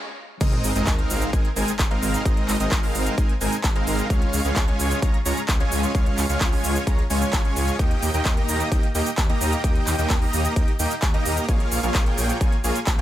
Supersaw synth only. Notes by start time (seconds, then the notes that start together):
0.41 G#3 C4 D#4 A#4 D#5
0.75 G#3 C4 D#4 A#4 D#5
0.99 G#3 C4 D#4 A#4 F5
1.33 G#3 C4 D#4 A#4 G#5
1.56 G#3 C4 D#4 A#4 G#5
1.91 G#3 C4 D#4 A#4 F5
2.25 G#3 C4 D#4 A#4 D#5
2.60 G#3 C4 D#4 A#4 D#5
2.83 G#3 C4 D#4 A#4 F5
3.18 G#3 C4 D#4 A#4 G#5
3.41 G#3 C4 D#4 A#4 G#5
3.76 G#3 C4 D#4 A#4 F5
4.10 G#3 C#4 F4 C#5 F5
4.45 G#3 C#4 F4 C#5 F5
4.68 G#3 C#4 F4 C#5 G#5
5.02 G#3 C#4 F4 C#5 A#5
5.26 G#3 C#4 F4 C#5 A#5
5.60 G#3 C#4 F4 C#5 G#5
5.95 G#3 C#4 F4 C#5 F5
6.29 G#3 C#4 F4 C#5 F5
6.52 G#3 C#4 F4 C#5 G#5
6.87 G#3 C#4 F4 C#5 A#5
7.10 G#3 C#4 F4 C#5 G#5
7.45 G#3 C#4 F4 C#5 G#5
7.79 A#3 D#4 G4 D#5 G5
8.14 A#3 D#4 G4 D#5 G5
8.37 A#3 D#4 G4 D#5 A#5
8.72 A#3 D#4 G4 D#5 G5
8.95 A#3 D#4 G4 D#5 G5
9.29 A#3 D#4 G4 D#5 A#5
9.64 A#3 D#4 G4 D#5 G5
9.99 A#3 D#4 G4 D#5 G5
10.22 A#3 D#4 G4 D#5 A#5
10.56 A#3 D#4 G4 D#5 G5
10.79 A#3 D#4 G4 D#5 G5
11.14 A#3 D#4 G4 D#5 A#5
11.49 A#3 F4 G#4 C#5 F5
11.83 A#3 F4 G#4 C#5 F5
12.06 A#3 F4 G#4 C#5 G5
12.41 A#3 F4 G#4 C#5 G#5
12.64 A#3 F4 G#4 C#5 G#5